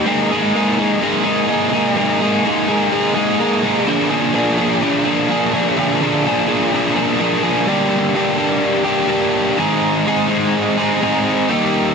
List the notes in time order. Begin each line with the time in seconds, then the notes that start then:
0.05 G#3 A#3 D#4 G#4
0.31 A#3 D#4 G#4
0.54 G#3 A#3 D#4 G#4
0.78 A#3 D#4 G#4
1.01 G#3 A#3 D#4 G#4
1.24 A#3 D#4 G#4
1.48 G#3 A#3 D#4 G#4
1.73 A#3 D#4 G#4
1.96 G#3 A#3 D#4 G#4
2.21 A#3 D#4 G#4
2.45 G#3 A#3 D#4 G#4
2.68 A#3 D#4 G#4
2.92 G#3 A#3 D#4 G#4
3.15 A#3 D#4 G#4
3.39 G#3 A#3 D#4 G#4
3.63 A#3 D#4 G#4
3.86 A#2 D3 F3 A#3 D4 G#4
4.10 F3 A#3 D4 G#4
4.32 F3 A#3 D4 G#4
4.58 F3 A#3 D4 G#4
4.81 A#2 D3 F3 A#3 D4 G#4
5.05 F3 A#3 D4 G#4
5.28 F3 A#3 D4 G#4
5.53 F3 A#3 D4 G#4
5.77 A#2 D3 F3 A#3 D4 G#4
6.01 F3 A#3 D4 G#4
6.24 F3 A#3 D4 G#4
6.47 F3 A#3 D4 G#4
6.73 A#2 D3 F3 A#3 D4 G#4
6.96 F3 A#3 D4 G#4
7.19 F3 A#3 D4 G#4
7.43 F3 A#3 D4 G#4
7.66 G2 D3 G3 A#3 D4 G4
8.14 G2 D3 G3 A#3 D4 G4
8.37 G3 A#3 D4 G4
8.85 G3 A#3 D4 G4
9.08 G3 A#3 D4 G4
9.57 G#2 D#3 G#3 C4 D#4 G#4
10.07 G#2 D#3 G#3 C4 D#4 G#4
10.28 G#3 C4 D#4 G#4
10.77 G#3 C4 D#4 G#4
11.01 G#3 C4 D#4 G#4
11.48 D#3 G3 A#3 D#4 G4